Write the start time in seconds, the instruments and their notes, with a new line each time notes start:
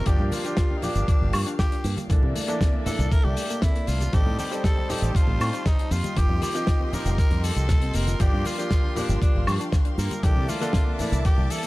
0.06 fingered electric bass G1, grand piano F3 A#3 D4 G4, synth arpeggio sound F3, tenor saxophone G4, string section G4 F5, kick, closed hi-hat, high bongo, cabasa, shaker
0.19 fingered electric bass G2, synth arpeggio sound G3, high bongo, low conga
0.25 tenor saxophone G4
0.32 synth arpeggio sound A#3, tenor saxophone F4, open hi-hat, high conga, cabasa, shaker
0.44 grand piano F3 A#3 D4 G4, synth arpeggio sound D4, closed hi-hat, cabasa, shaker
0.57 synth arpeggio sound F4, kick, snare, closed hi-hat, cabasa, shaker
0.70 synth arpeggio sound D4, high conga
0.77 tenor saxophone D#4
0.82 grand piano F3 A#3 D4 G4, synth arpeggio sound A#3, tenor saxophone D4, open hi-hat, high bongo, low conga, cabasa, shaker
0.95 fingered electric bass G1, synth arpeggio sound G3, closed hi-hat, low conga, cabasa, shaker
1.08 synth arpeggio sound F3, tenor saxophone D4, kick, closed hi-hat, cabasa, shaker
1.21 fingered electric bass G1, synth arpeggio sound G3, high conga
1.33 fingered electric bass G2, synth arpeggio sound A#3, open hi-hat, cabasa, high woodblock, shaker
1.46 synth arpeggio sound D4, closed hi-hat, cabasa, shaker
1.59 synth arpeggio sound F4, tenor saxophone G4, kick, snare, closed hi-hat, high conga, cabasa, shaker
1.72 synth arpeggio sound D4, closed hi-hat
1.84 fingered electric bass G2, synth arpeggio sound A#3, open hi-hat, cabasa, shaker
1.97 synth arpeggio sound G3, closed hi-hat, high conga, cabasa, shaker
2.09 fingered electric bass C2, grand piano E3 A#3 D4 A4, synth arpeggio sound E3, string section A4 D5 E5, kick, closed hi-hat, high bongo, cabasa, shaker
2.22 fingered electric bass C3, synth arpeggio sound G3, high bongo, low conga
2.35 synth arpeggio sound A3, open hi-hat, high conga, cabasa, shaker
2.47 grand piano E3 A#3 D4 A4, synth arpeggio sound A#3, closed hi-hat, cabasa, shaker
2.61 synth arpeggio sound C4, kick, snare, closed hi-hat, cabasa, shaker
2.73 synth arpeggio sound A#3, high conga
2.85 grand piano E3 A#3 D4 A4, synth arpeggio sound A3, tenor saxophone A4, muted fingered electric bass stroke, open hi-hat, high bongo, low conga, cabasa, shaker
2.99 fingered electric bass C2, synth arpeggio sound G3, closed hi-hat, low conga, cabasa, shaker
3.12 synth arpeggio sound E3, tenor saxophone A#4, kick, closed hi-hat, cabasa, shaker
3.24 fingered electric bass C2, synth arpeggio sound G3, tenor saxophone G4, high conga
3.37 synth arpeggio sound A3, open hi-hat, cabasa, shaker
3.50 synth arpeggio sound A#3, closed hi-hat, cabasa, shaker
3.62 synth arpeggio sound C4, tenor saxophone E4, kick, snare, closed hi-hat, high conga, cabasa, shaker
3.75 synth arpeggio sound A#3, closed hi-hat
3.87 fingered electric bass C2, synth arpeggio sound A3, tenor saxophone F4, open hi-hat, cabasa, shaker
4.00 synth arpeggio sound G3, closed hi-hat, high conga, cabasa, shaker
4.13 fingered electric bass A1, grand piano G3 C4 D#4 A4, synth arpeggio sound G3, string section G4 C5 A5, tenor saxophone G4, kick, closed hi-hat, high bongo, cabasa, shaker
4.26 fingered electric bass A2, synth arpeggio sound A3, high bongo, low conga
4.39 synth arpeggio sound C4, tenor saxophone G4, open hi-hat, high conga, cabasa, shaker
4.51 grand piano G3 C4 D#4 A4, synth arpeggio sound D#4, closed hi-hat, cabasa, shaker
4.64 synth arpeggio sound G4, tenor saxophone A4, kick, snare, closed hi-hat, cabasa, shaker
4.77 synth arpeggio sound D#4, high conga
4.89 grand piano G3 C4 D#4 A4, synth arpeggio sound C4, tenor saxophone G4, open hi-hat, high bongo, low conga, cabasa, shaker
5.02 fingered electric bass A1, synth arpeggio sound A3, closed hi-hat, low conga, cabasa, shaker
5.15 synth arpeggio sound G3, tenor saxophone F4, kick, closed hi-hat, cabasa, shaker
5.27 fingered electric bass A1, synth arpeggio sound A3, high conga
5.40 fingered electric bass A2, synth arpeggio sound C4, open hi-hat, cabasa, high woodblock, shaker
5.53 synth arpeggio sound D#4, closed hi-hat, cabasa, shaker
5.66 tenor saxophone D#4, synth arpeggio sound G4, kick, snare, closed hi-hat, high conga, cabasa, shaker
5.78 synth arpeggio sound D#4, closed hi-hat
5.91 fingered electric bass F2, synth arpeggio sound A#3, tenor saxophone F4, string section G4 D#5 C6, open hi-hat, cabasa, shaker
6.04 synth arpeggio sound G3, closed hi-hat, high conga, cabasa, shaker
6.16 fingered electric bass F1, grand piano F3 A#3 D#4 G4, synth arpeggio sound F3, tenor saxophone G4, kick, closed hi-hat, high bongo, cabasa, shaker
6.29 fingered electric bass F2, synth arpeggio sound G3, high bongo, low conga
6.42 synth arpeggio sound A#3, tenor saxophone G4, open hi-hat, high conga, cabasa, shaker
6.54 grand piano F3 A#3 D#4 G4, synth arpeggio sound C4, closed hi-hat, cabasa, shaker
6.67 synth arpeggio sound D#4, kick, snare, closed hi-hat, cabasa, shaker
6.80 synth arpeggio sound C4, high conga
6.92 grand piano F3 A#3 D#4 G4, synth arpeggio sound A#3, tenor saxophone A#4, muted fingered electric bass stroke, open hi-hat, high bongo, low conga, cabasa, shaker
7.05 fingered electric bass F1, synth arpeggio sound G3, closed hi-hat, low conga, cabasa, shaker
7.18 synth arpeggio sound F3, tenor saxophone A#4, kick, closed hi-hat, cabasa, shaker
7.31 fingered electric bass F2, synth arpeggio sound G3, closed hi-hat, high conga
7.43 synth arpeggio sound G3, tenor saxophone A4, open hi-hat, cabasa, shaker
7.56 fingered electric bass C2, synth arpeggio sound F3, closed hi-hat, cabasa, shaker
7.69 synth arpeggio sound A#3, kick, snare, closed hi-hat, high conga, cabasa, shaker
7.82 synth arpeggio sound C4, closed hi-hat
7.93 fingered electric bass F1, synth arpeggio sound A#3, tenor saxophone A#4, open hi-hat, cabasa, shaker
8.07 synth arpeggio sound F4, closed hi-hat, high conga, cabasa, shaker
8.19 fingered electric bass G1, grand piano F3 A#3 D4 G4, synth arpeggio sound F3, string section G4 F5, tenor saxophone G4, kick, closed hi-hat, high bongo, cabasa, shaker
8.33 fingered electric bass G2, synth arpeggio sound G3, high bongo, low conga
8.45 synth arpeggio sound A#3, tenor saxophone F4, open hi-hat, high conga, cabasa, shaker
8.58 grand piano F3 A#3 D4 G4, synth arpeggio sound D4, closed hi-hat, cabasa, shaker
8.71 synth arpeggio sound F4, kick, snare, closed hi-hat, cabasa, shaker
8.84 synth arpeggio sound D4, high conga
8.95 grand piano F3 A#3 D4 G4, synth arpeggio sound A#3, tenor saxophone D4, open hi-hat, high bongo, low conga, cabasa, shaker
9.09 fingered electric bass G1, synth arpeggio sound G3, closed hi-hat, low conga, cabasa, shaker
9.21 synth arpeggio sound F3, tenor saxophone D4, kick, closed hi-hat, cabasa, shaker
9.34 fingered electric bass G1, synth arpeggio sound G3, high conga
9.47 fingered electric bass G2, synth arpeggio sound F3, open hi-hat, cabasa, high woodblock, shaker
9.60 synth arpeggio sound D4, closed hi-hat, cabasa, shaker
9.72 synth arpeggio sound F4, kick, snare, closed hi-hat, high conga, cabasa, shaker
9.85 synth arpeggio sound D4, closed hi-hat
9.98 fingered electric bass G2, synth arpeggio sound A#3, tenor saxophone A#4, open hi-hat, cabasa, shaker
10.11 synth arpeggio sound G3, closed hi-hat, high conga, cabasa, shaker
10.23 fingered electric bass C2, grand piano E3 A#3 D4 A4, synth arpeggio sound E3, string section A#3 E5 A5 D6, tenor saxophone G4, kick, closed hi-hat, high bongo, cabasa, shaker
10.36 fingered electric bass C3, synth arpeggio sound G3, high bongo, low conga
10.49 synth arpeggio sound A3, tenor saxophone F4, open hi-hat, high conga, cabasa, shaker
10.61 grand piano D3 A#3 D4 A4, synth arpeggio sound A#3, closed hi-hat, cabasa, shaker
10.73 synth arpeggio sound C4, kick, snare, closed hi-hat, cabasa, shaker
10.87 synth arpeggio sound A#3, high conga
10.94 tenor saxophone F4
10.99 grand piano E3 A#3 D4 A4, synth arpeggio sound A3, tenor saxophone E4, muted fingered electric bass stroke, open hi-hat, high bongo, low conga, cabasa, shaker
11.12 fingered electric bass C2, synth arpeggio sound G3, closed hi-hat, low conga, cabasa, shaker
11.25 synth arpeggio sound E3, tenor saxophone G4, kick, closed hi-hat, cabasa, shaker
11.38 fingered electric bass C2, synth arpeggio sound G3, high conga
11.50 synth arpeggio sound E3, tenor saxophone A4, open hi-hat, cabasa, shaker
11.63 synth arpeggio sound A#3, closed hi-hat, cabasa, shaker